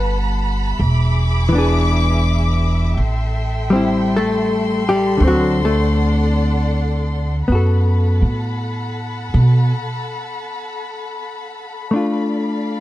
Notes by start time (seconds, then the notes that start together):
Already playing: G1 G3 B3 B4 F#5 A5 B5
0.80 E1 G#4 E5 D6
1.49 E3 B3
1.55 D4 G#4
2.97 A1 A4 G5 C6
3.70 G3 C4
3.76 E4
4.16 A3 A4
4.89 G3 G4
5.17 D2 D3 D5 F#5
5.22 A3 C4
5.27 F#3 F#4
5.65 A3 A4
7.46 F#2 B3 A4 F#5 A5 B5
7.52 F#4 A4
8.22 A2
9.34 B2
11.90 A3 D4 D5 F5
11.96 F4